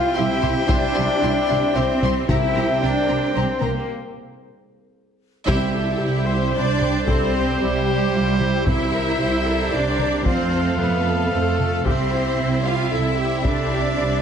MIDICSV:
0, 0, Header, 1, 13, 480
1, 0, Start_track
1, 0, Key_signature, 0, "major"
1, 0, Tempo, 530973
1, 633, Time_signature, 3, 2, 24, 8
1, 12854, End_track
2, 0, Start_track
2, 0, Title_t, "Trumpet"
2, 0, Program_c, 0, 56
2, 0, Note_on_c, 0, 79, 90
2, 1913, Note_off_c, 0, 79, 0
2, 2067, Note_on_c, 0, 79, 93
2, 3481, Note_off_c, 0, 79, 0
2, 4950, Note_on_c, 0, 72, 101
2, 7795, Note_off_c, 0, 72, 0
2, 7829, Note_on_c, 0, 72, 74
2, 9242, Note_off_c, 0, 72, 0
2, 9276, Note_on_c, 0, 77, 69
2, 10686, Note_off_c, 0, 77, 0
2, 10716, Note_on_c, 0, 76, 70
2, 12854, Note_off_c, 0, 76, 0
2, 12854, End_track
3, 0, Start_track
3, 0, Title_t, "Flute section"
3, 0, Program_c, 1, 73
3, 4943, Note_on_c, 1, 76, 102
3, 5872, Note_off_c, 1, 76, 0
3, 5909, Note_on_c, 1, 74, 83
3, 6381, Note_off_c, 1, 74, 0
3, 6400, Note_on_c, 1, 72, 72
3, 6869, Note_on_c, 1, 67, 81
3, 6877, Note_off_c, 1, 72, 0
3, 7822, Note_on_c, 1, 76, 88
3, 7831, Note_off_c, 1, 67, 0
3, 8787, Note_off_c, 1, 76, 0
3, 8787, Note_on_c, 1, 74, 80
3, 9270, Note_off_c, 1, 74, 0
3, 9272, Note_on_c, 1, 72, 76
3, 9743, Note_off_c, 1, 72, 0
3, 9744, Note_on_c, 1, 71, 76
3, 10005, Note_off_c, 1, 71, 0
3, 10219, Note_on_c, 1, 69, 70
3, 10696, Note_off_c, 1, 69, 0
3, 10710, Note_on_c, 1, 72, 77
3, 11432, Note_off_c, 1, 72, 0
3, 11436, Note_on_c, 1, 77, 72
3, 11669, Note_on_c, 1, 76, 70
3, 11674, Note_off_c, 1, 77, 0
3, 12143, Note_on_c, 1, 74, 75
3, 12151, Note_off_c, 1, 76, 0
3, 12854, Note_off_c, 1, 74, 0
3, 12854, End_track
4, 0, Start_track
4, 0, Title_t, "French horn section"
4, 0, Program_c, 2, 60
4, 0, Note_on_c, 2, 77, 109
4, 133, Note_on_c, 2, 76, 108
4, 143, Note_off_c, 2, 77, 0
4, 467, Note_off_c, 2, 76, 0
4, 614, Note_on_c, 2, 74, 125
4, 1564, Note_off_c, 2, 74, 0
4, 1583, Note_on_c, 2, 72, 114
4, 2062, Note_on_c, 2, 76, 112
4, 2068, Note_off_c, 2, 72, 0
4, 2537, Note_off_c, 2, 76, 0
4, 2541, Note_on_c, 2, 74, 107
4, 3017, Note_off_c, 2, 74, 0
4, 3025, Note_on_c, 2, 72, 94
4, 3265, Note_on_c, 2, 70, 90
4, 3269, Note_off_c, 2, 72, 0
4, 3389, Note_off_c, 2, 70, 0
4, 3401, Note_on_c, 2, 70, 74
4, 3514, Note_off_c, 2, 70, 0
4, 4946, Note_on_c, 2, 72, 86
4, 4947, Note_on_c, 2, 67, 85
4, 7793, Note_off_c, 2, 72, 0
4, 7794, Note_off_c, 2, 67, 0
4, 7827, Note_on_c, 2, 67, 62
4, 7830, Note_on_c, 2, 70, 62
4, 9241, Note_off_c, 2, 67, 0
4, 9271, Note_off_c, 2, 70, 0
4, 9286, Note_on_c, 2, 69, 54
4, 9289, Note_on_c, 2, 65, 62
4, 10720, Note_off_c, 2, 69, 0
4, 10721, Note_off_c, 2, 65, 0
4, 10721, Note_on_c, 2, 72, 57
4, 10722, Note_on_c, 2, 67, 58
4, 12854, Note_off_c, 2, 67, 0
4, 12854, Note_off_c, 2, 72, 0
4, 12854, End_track
5, 0, Start_track
5, 0, Title_t, "Violin section"
5, 0, Program_c, 3, 48
5, 128, Note_on_c, 3, 84, 78
5, 201, Note_off_c, 3, 84, 0
5, 371, Note_on_c, 3, 84, 73
5, 443, Note_off_c, 3, 84, 0
5, 609, Note_on_c, 3, 84, 83
5, 681, Note_off_c, 3, 84, 0
5, 854, Note_on_c, 3, 84, 85
5, 926, Note_off_c, 3, 84, 0
5, 1111, Note_on_c, 3, 84, 86
5, 1183, Note_off_c, 3, 84, 0
5, 1338, Note_on_c, 3, 84, 84
5, 1411, Note_off_c, 3, 84, 0
5, 1580, Note_on_c, 3, 84, 68
5, 1652, Note_off_c, 3, 84, 0
5, 1843, Note_on_c, 3, 84, 78
5, 1915, Note_off_c, 3, 84, 0
5, 2073, Note_on_c, 3, 82, 81
5, 2145, Note_off_c, 3, 82, 0
5, 2308, Note_on_c, 3, 82, 69
5, 2380, Note_off_c, 3, 82, 0
5, 2562, Note_on_c, 3, 82, 68
5, 2634, Note_off_c, 3, 82, 0
5, 2787, Note_on_c, 3, 82, 68
5, 2859, Note_off_c, 3, 82, 0
5, 3031, Note_on_c, 3, 82, 62
5, 3104, Note_off_c, 3, 82, 0
5, 3259, Note_on_c, 3, 82, 57
5, 3331, Note_off_c, 3, 82, 0
5, 4957, Note_on_c, 3, 64, 94
5, 5178, Note_off_c, 3, 64, 0
5, 5205, Note_on_c, 3, 67, 57
5, 5439, Note_off_c, 3, 67, 0
5, 5447, Note_on_c, 3, 64, 59
5, 5680, Note_off_c, 3, 64, 0
5, 5693, Note_on_c, 3, 67, 62
5, 5923, Note_off_c, 3, 67, 0
5, 5924, Note_on_c, 3, 64, 57
5, 6142, Note_off_c, 3, 64, 0
5, 6154, Note_on_c, 3, 67, 56
5, 6389, Note_on_c, 3, 64, 62
5, 6393, Note_off_c, 3, 67, 0
5, 6631, Note_off_c, 3, 64, 0
5, 6636, Note_on_c, 3, 67, 59
5, 6874, Note_off_c, 3, 67, 0
5, 6879, Note_on_c, 3, 64, 62
5, 7099, Note_off_c, 3, 64, 0
5, 7125, Note_on_c, 3, 67, 57
5, 7359, Note_off_c, 3, 67, 0
5, 7361, Note_on_c, 3, 64, 53
5, 7597, Note_off_c, 3, 64, 0
5, 7617, Note_on_c, 3, 67, 59
5, 7845, Note_off_c, 3, 67, 0
5, 7854, Note_on_c, 3, 72, 59
5, 8067, Note_off_c, 3, 72, 0
5, 8094, Note_on_c, 3, 70, 61
5, 8323, Note_off_c, 3, 70, 0
5, 8323, Note_on_c, 3, 72, 57
5, 8558, Note_off_c, 3, 72, 0
5, 8567, Note_on_c, 3, 70, 55
5, 8791, Note_on_c, 3, 72, 51
5, 8800, Note_off_c, 3, 70, 0
5, 9015, Note_off_c, 3, 72, 0
5, 9031, Note_on_c, 3, 70, 55
5, 9272, Note_off_c, 3, 70, 0
5, 9276, Note_on_c, 3, 72, 60
5, 9498, Note_off_c, 3, 72, 0
5, 9506, Note_on_c, 3, 69, 60
5, 9735, Note_on_c, 3, 72, 57
5, 9750, Note_off_c, 3, 69, 0
5, 9979, Note_on_c, 3, 69, 53
5, 9984, Note_off_c, 3, 72, 0
5, 10218, Note_on_c, 3, 72, 51
5, 10226, Note_off_c, 3, 69, 0
5, 10448, Note_off_c, 3, 72, 0
5, 10455, Note_on_c, 3, 69, 52
5, 10704, Note_off_c, 3, 69, 0
5, 10721, Note_on_c, 3, 64, 60
5, 10940, Note_off_c, 3, 64, 0
5, 10944, Note_on_c, 3, 67, 54
5, 11188, Note_off_c, 3, 67, 0
5, 11201, Note_on_c, 3, 64, 54
5, 11437, Note_off_c, 3, 64, 0
5, 11447, Note_on_c, 3, 67, 55
5, 11680, Note_off_c, 3, 67, 0
5, 11691, Note_on_c, 3, 64, 48
5, 11906, Note_off_c, 3, 64, 0
5, 11930, Note_on_c, 3, 67, 54
5, 12160, Note_on_c, 3, 64, 56
5, 12161, Note_off_c, 3, 67, 0
5, 12396, Note_off_c, 3, 64, 0
5, 12400, Note_on_c, 3, 67, 53
5, 12636, Note_off_c, 3, 67, 0
5, 12636, Note_on_c, 3, 64, 50
5, 12854, Note_off_c, 3, 64, 0
5, 12854, End_track
6, 0, Start_track
6, 0, Title_t, "String section"
6, 0, Program_c, 4, 48
6, 0, Note_on_c, 4, 60, 89
6, 0, Note_on_c, 4, 67, 94
6, 0, Note_on_c, 4, 72, 94
6, 0, Note_on_c, 4, 76, 94
6, 2033, Note_off_c, 4, 72, 0
6, 2061, Note_on_c, 4, 72, 100
6, 2070, Note_on_c, 4, 70, 92
6, 2072, Note_off_c, 4, 76, 0
6, 3506, Note_off_c, 4, 60, 0
6, 3507, Note_off_c, 4, 72, 0
6, 3509, Note_off_c, 4, 67, 0
6, 3512, Note_off_c, 4, 70, 0
6, 4939, Note_on_c, 4, 72, 96
6, 4940, Note_on_c, 4, 67, 100
6, 4942, Note_on_c, 4, 60, 95
6, 7790, Note_off_c, 4, 72, 0
6, 7817, Note_on_c, 4, 70, 70
6, 9230, Note_off_c, 4, 67, 0
6, 9231, Note_off_c, 4, 60, 0
6, 9248, Note_on_c, 4, 65, 71
6, 9249, Note_on_c, 4, 69, 70
6, 9254, Note_on_c, 4, 57, 70
6, 9265, Note_off_c, 4, 70, 0
6, 10701, Note_off_c, 4, 65, 0
6, 10701, Note_off_c, 4, 69, 0
6, 10703, Note_off_c, 4, 57, 0
6, 10705, Note_on_c, 4, 64, 77
6, 10710, Note_on_c, 4, 67, 75
6, 10710, Note_on_c, 4, 72, 78
6, 10711, Note_on_c, 4, 60, 71
6, 12854, Note_off_c, 4, 60, 0
6, 12854, Note_off_c, 4, 64, 0
6, 12854, Note_off_c, 4, 67, 0
6, 12854, Note_off_c, 4, 72, 0
6, 12854, End_track
7, 0, Start_track
7, 0, Title_t, "Violin section"
7, 0, Program_c, 5, 48
7, 137, Note_on_c, 5, 67, 74
7, 209, Note_off_c, 5, 67, 0
7, 377, Note_on_c, 5, 67, 72
7, 449, Note_off_c, 5, 67, 0
7, 617, Note_on_c, 5, 67, 84
7, 689, Note_off_c, 5, 67, 0
7, 852, Note_on_c, 5, 67, 75
7, 925, Note_off_c, 5, 67, 0
7, 1101, Note_on_c, 5, 67, 80
7, 1174, Note_off_c, 5, 67, 0
7, 1353, Note_on_c, 5, 67, 71
7, 1425, Note_off_c, 5, 67, 0
7, 1587, Note_on_c, 5, 67, 82
7, 1660, Note_off_c, 5, 67, 0
7, 1833, Note_on_c, 5, 67, 66
7, 1905, Note_off_c, 5, 67, 0
7, 2080, Note_on_c, 5, 67, 82
7, 2153, Note_off_c, 5, 67, 0
7, 2324, Note_on_c, 5, 67, 67
7, 2396, Note_off_c, 5, 67, 0
7, 2552, Note_on_c, 5, 67, 68
7, 2624, Note_off_c, 5, 67, 0
7, 2793, Note_on_c, 5, 67, 57
7, 2865, Note_off_c, 5, 67, 0
7, 3051, Note_on_c, 5, 67, 70
7, 3124, Note_off_c, 5, 67, 0
7, 3291, Note_on_c, 5, 67, 47
7, 3364, Note_off_c, 5, 67, 0
7, 4953, Note_on_c, 5, 76, 99
7, 5877, Note_off_c, 5, 76, 0
7, 5929, Note_on_c, 5, 74, 91
7, 6390, Note_on_c, 5, 72, 78
7, 6391, Note_off_c, 5, 74, 0
7, 6862, Note_off_c, 5, 72, 0
7, 6871, Note_on_c, 5, 67, 79
7, 7832, Note_off_c, 5, 67, 0
7, 7843, Note_on_c, 5, 76, 88
7, 8779, Note_off_c, 5, 76, 0
7, 8791, Note_on_c, 5, 74, 79
7, 9272, Note_off_c, 5, 74, 0
7, 9274, Note_on_c, 5, 72, 76
7, 9744, Note_off_c, 5, 72, 0
7, 9776, Note_on_c, 5, 71, 80
7, 10235, Note_off_c, 5, 71, 0
7, 10236, Note_on_c, 5, 69, 77
7, 10714, Note_off_c, 5, 69, 0
7, 10732, Note_on_c, 5, 72, 80
7, 11428, Note_off_c, 5, 72, 0
7, 11447, Note_on_c, 5, 77, 77
7, 11680, Note_off_c, 5, 77, 0
7, 11704, Note_on_c, 5, 76, 68
7, 12168, Note_off_c, 5, 76, 0
7, 12185, Note_on_c, 5, 74, 85
7, 12854, Note_off_c, 5, 74, 0
7, 12854, End_track
8, 0, Start_track
8, 0, Title_t, "Viola section"
8, 0, Program_c, 6, 48
8, 136, Note_on_c, 6, 64, 76
8, 208, Note_off_c, 6, 64, 0
8, 376, Note_on_c, 6, 64, 70
8, 448, Note_off_c, 6, 64, 0
8, 608, Note_on_c, 6, 64, 81
8, 681, Note_off_c, 6, 64, 0
8, 857, Note_on_c, 6, 64, 73
8, 930, Note_off_c, 6, 64, 0
8, 1110, Note_on_c, 6, 64, 85
8, 1182, Note_off_c, 6, 64, 0
8, 1343, Note_on_c, 6, 64, 77
8, 1416, Note_off_c, 6, 64, 0
8, 1579, Note_on_c, 6, 64, 78
8, 1652, Note_off_c, 6, 64, 0
8, 1828, Note_on_c, 6, 64, 76
8, 1900, Note_off_c, 6, 64, 0
8, 2064, Note_on_c, 6, 60, 82
8, 2137, Note_off_c, 6, 60, 0
8, 2309, Note_on_c, 6, 60, 71
8, 2381, Note_off_c, 6, 60, 0
8, 2546, Note_on_c, 6, 60, 73
8, 2619, Note_off_c, 6, 60, 0
8, 2774, Note_on_c, 6, 60, 65
8, 2846, Note_off_c, 6, 60, 0
8, 3021, Note_on_c, 6, 60, 64
8, 3093, Note_off_c, 6, 60, 0
8, 3260, Note_on_c, 6, 60, 54
8, 3332, Note_off_c, 6, 60, 0
8, 4948, Note_on_c, 6, 67, 97
8, 5173, Note_off_c, 6, 67, 0
8, 5186, Note_on_c, 6, 69, 68
8, 5414, Note_on_c, 6, 67, 77
8, 5430, Note_off_c, 6, 69, 0
8, 5660, Note_on_c, 6, 72, 83
8, 5663, Note_off_c, 6, 67, 0
8, 6377, Note_on_c, 6, 69, 75
8, 6386, Note_off_c, 6, 72, 0
8, 6620, Note_off_c, 6, 69, 0
8, 6622, Note_on_c, 6, 67, 61
8, 7346, Note_on_c, 6, 65, 65
8, 7348, Note_off_c, 6, 67, 0
8, 7589, Note_off_c, 6, 65, 0
8, 7590, Note_on_c, 6, 64, 66
8, 8298, Note_on_c, 6, 67, 66
8, 8311, Note_off_c, 6, 64, 0
8, 8538, Note_on_c, 6, 69, 71
8, 8545, Note_off_c, 6, 67, 0
8, 8784, Note_on_c, 6, 67, 67
8, 8786, Note_off_c, 6, 69, 0
8, 9269, Note_off_c, 6, 67, 0
8, 9272, Note_on_c, 6, 65, 68
8, 9744, Note_on_c, 6, 69, 80
8, 9752, Note_off_c, 6, 65, 0
8, 10689, Note_off_c, 6, 69, 0
8, 10710, Note_on_c, 6, 67, 67
8, 10943, Note_on_c, 6, 64, 68
8, 10951, Note_off_c, 6, 67, 0
8, 11667, Note_on_c, 6, 69, 67
8, 11668, Note_off_c, 6, 64, 0
8, 11905, Note_off_c, 6, 69, 0
8, 11908, Note_on_c, 6, 67, 57
8, 12150, Note_off_c, 6, 67, 0
8, 12151, Note_on_c, 6, 69, 61
8, 12387, Note_on_c, 6, 67, 56
8, 12392, Note_off_c, 6, 69, 0
8, 12614, Note_off_c, 6, 67, 0
8, 12625, Note_on_c, 6, 67, 61
8, 12854, Note_off_c, 6, 67, 0
8, 12854, End_track
9, 0, Start_track
9, 0, Title_t, "Cello section"
9, 0, Program_c, 7, 48
9, 0, Note_on_c, 7, 65, 108
9, 146, Note_on_c, 7, 64, 90
9, 152, Note_off_c, 7, 65, 0
9, 620, Note_off_c, 7, 64, 0
9, 627, Note_on_c, 7, 62, 106
9, 1571, Note_off_c, 7, 62, 0
9, 1581, Note_on_c, 7, 60, 102
9, 2064, Note_on_c, 7, 64, 110
9, 2067, Note_off_c, 7, 60, 0
9, 2539, Note_off_c, 7, 64, 0
9, 2551, Note_on_c, 7, 62, 97
9, 3022, Note_off_c, 7, 62, 0
9, 3024, Note_on_c, 7, 60, 78
9, 3264, Note_off_c, 7, 60, 0
9, 3271, Note_on_c, 7, 58, 70
9, 3372, Note_off_c, 7, 58, 0
9, 3383, Note_on_c, 7, 58, 69
9, 3505, Note_off_c, 7, 58, 0
9, 4954, Note_on_c, 7, 64, 103
9, 5877, Note_off_c, 7, 64, 0
9, 5906, Note_on_c, 7, 62, 88
9, 6389, Note_off_c, 7, 62, 0
9, 6391, Note_on_c, 7, 60, 99
9, 6862, Note_off_c, 7, 60, 0
9, 6872, Note_on_c, 7, 55, 89
9, 7826, Note_on_c, 7, 64, 100
9, 7832, Note_off_c, 7, 55, 0
9, 8770, Note_off_c, 7, 64, 0
9, 8799, Note_on_c, 7, 62, 87
9, 9276, Note_off_c, 7, 62, 0
9, 9279, Note_on_c, 7, 60, 87
9, 9747, Note_off_c, 7, 60, 0
9, 9758, Note_on_c, 7, 59, 83
9, 10236, Note_off_c, 7, 59, 0
9, 10236, Note_on_c, 7, 57, 85
9, 10711, Note_on_c, 7, 60, 90
9, 10715, Note_off_c, 7, 57, 0
9, 11417, Note_off_c, 7, 60, 0
9, 11435, Note_on_c, 7, 65, 87
9, 11674, Note_off_c, 7, 65, 0
9, 11675, Note_on_c, 7, 64, 77
9, 12154, Note_off_c, 7, 64, 0
9, 12160, Note_on_c, 7, 62, 88
9, 12854, Note_off_c, 7, 62, 0
9, 12854, End_track
10, 0, Start_track
10, 0, Title_t, "Trombone section"
10, 0, Program_c, 8, 61
10, 0, Note_on_c, 8, 48, 85
10, 0, Note_on_c, 8, 64, 89
10, 1906, Note_off_c, 8, 48, 0
10, 1906, Note_off_c, 8, 64, 0
10, 2060, Note_on_c, 8, 48, 87
10, 2065, Note_on_c, 8, 60, 93
10, 3477, Note_off_c, 8, 48, 0
10, 3509, Note_off_c, 8, 60, 0
10, 4960, Note_on_c, 8, 48, 89
10, 4962, Note_on_c, 8, 55, 91
10, 7800, Note_off_c, 8, 48, 0
10, 7801, Note_off_c, 8, 55, 0
10, 7840, Note_on_c, 8, 55, 68
10, 7845, Note_on_c, 8, 48, 65
10, 9248, Note_off_c, 8, 55, 0
10, 9280, Note_on_c, 8, 57, 65
10, 10683, Note_off_c, 8, 48, 0
10, 10688, Note_off_c, 8, 57, 0
10, 10729, Note_on_c, 8, 48, 73
10, 10729, Note_on_c, 8, 55, 67
10, 12854, Note_off_c, 8, 48, 0
10, 12854, Note_off_c, 8, 55, 0
10, 12854, End_track
11, 0, Start_track
11, 0, Title_t, "Timpani"
11, 0, Program_c, 10, 47
11, 2068, Note_on_c, 10, 48, 83
11, 2754, Note_off_c, 10, 48, 0
11, 4959, Note_on_c, 10, 48, 83
11, 5640, Note_off_c, 10, 48, 0
11, 7838, Note_on_c, 10, 48, 73
11, 8519, Note_off_c, 10, 48, 0
11, 12854, End_track
12, 0, Start_track
12, 0, Title_t, "Double bass section"
12, 0, Program_c, 11, 48
12, 159, Note_on_c, 11, 36, 90
12, 231, Note_off_c, 11, 36, 0
12, 393, Note_on_c, 11, 36, 78
12, 465, Note_off_c, 11, 36, 0
12, 633, Note_on_c, 11, 36, 91
12, 705, Note_off_c, 11, 36, 0
12, 872, Note_on_c, 11, 36, 77
12, 944, Note_off_c, 11, 36, 0
12, 1110, Note_on_c, 11, 36, 96
12, 1182, Note_off_c, 11, 36, 0
12, 1358, Note_on_c, 11, 36, 80
12, 1431, Note_off_c, 11, 36, 0
12, 1585, Note_on_c, 11, 36, 86
12, 1658, Note_off_c, 11, 36, 0
12, 1817, Note_on_c, 11, 36, 88
12, 1890, Note_off_c, 11, 36, 0
12, 2068, Note_on_c, 11, 36, 86
12, 2140, Note_off_c, 11, 36, 0
12, 2301, Note_on_c, 11, 36, 80
12, 2373, Note_off_c, 11, 36, 0
12, 2543, Note_on_c, 11, 36, 79
12, 2615, Note_off_c, 11, 36, 0
12, 2787, Note_on_c, 11, 36, 66
12, 2860, Note_off_c, 11, 36, 0
12, 3026, Note_on_c, 11, 36, 75
12, 3099, Note_off_c, 11, 36, 0
12, 3267, Note_on_c, 11, 36, 69
12, 3339, Note_off_c, 11, 36, 0
12, 4940, Note_on_c, 11, 36, 94
12, 5348, Note_off_c, 11, 36, 0
12, 5427, Note_on_c, 11, 36, 75
12, 5853, Note_off_c, 11, 36, 0
12, 5914, Note_on_c, 11, 36, 73
12, 6337, Note_off_c, 11, 36, 0
12, 6390, Note_on_c, 11, 36, 71
12, 6815, Note_off_c, 11, 36, 0
12, 6868, Note_on_c, 11, 36, 72
12, 7294, Note_off_c, 11, 36, 0
12, 7357, Note_on_c, 11, 36, 69
12, 7778, Note_off_c, 11, 36, 0
12, 7837, Note_on_c, 11, 36, 69
12, 8258, Note_off_c, 11, 36, 0
12, 8311, Note_on_c, 11, 36, 74
12, 8735, Note_off_c, 11, 36, 0
12, 8788, Note_on_c, 11, 36, 70
12, 9214, Note_off_c, 11, 36, 0
12, 9276, Note_on_c, 11, 41, 72
12, 9698, Note_off_c, 11, 41, 0
12, 9755, Note_on_c, 11, 41, 74
12, 10177, Note_off_c, 11, 41, 0
12, 10233, Note_on_c, 11, 41, 65
12, 10656, Note_off_c, 11, 41, 0
12, 10716, Note_on_c, 11, 36, 65
12, 11138, Note_off_c, 11, 36, 0
12, 11200, Note_on_c, 11, 36, 71
12, 11620, Note_off_c, 11, 36, 0
12, 11674, Note_on_c, 11, 36, 59
12, 12097, Note_off_c, 11, 36, 0
12, 12157, Note_on_c, 11, 36, 65
12, 12579, Note_off_c, 11, 36, 0
12, 12633, Note_on_c, 11, 36, 69
12, 12854, Note_off_c, 11, 36, 0
12, 12854, End_track
13, 0, Start_track
13, 0, Title_t, "Taiko and cinematic ensemble drums"
13, 385, Note_on_c, 9, 47, 51
13, 476, Note_off_c, 9, 47, 0
13, 621, Note_on_c, 9, 41, 101
13, 711, Note_off_c, 9, 41, 0
13, 1828, Note_on_c, 9, 47, 53
13, 1919, Note_off_c, 9, 47, 0
13, 2065, Note_on_c, 9, 41, 113
13, 2156, Note_off_c, 9, 41, 0
13, 3264, Note_on_c, 9, 47, 51
13, 3355, Note_off_c, 9, 47, 0
13, 4951, Note_on_c, 9, 41, 102
13, 5042, Note_off_c, 9, 41, 0
13, 6155, Note_on_c, 9, 47, 45
13, 6245, Note_off_c, 9, 47, 0
13, 6391, Note_on_c, 9, 41, 100
13, 6481, Note_off_c, 9, 41, 0
13, 7593, Note_on_c, 9, 47, 44
13, 7683, Note_off_c, 9, 47, 0
13, 7832, Note_on_c, 9, 41, 95
13, 7922, Note_off_c, 9, 41, 0
13, 9034, Note_on_c, 9, 47, 42
13, 9125, Note_off_c, 9, 47, 0
13, 9267, Note_on_c, 9, 41, 93
13, 9358, Note_off_c, 9, 41, 0
13, 10478, Note_on_c, 9, 47, 46
13, 10568, Note_off_c, 9, 47, 0
13, 10714, Note_on_c, 9, 41, 93
13, 10805, Note_off_c, 9, 41, 0
13, 12154, Note_on_c, 9, 41, 85
13, 12244, Note_off_c, 9, 41, 0
13, 12854, End_track
0, 0, End_of_file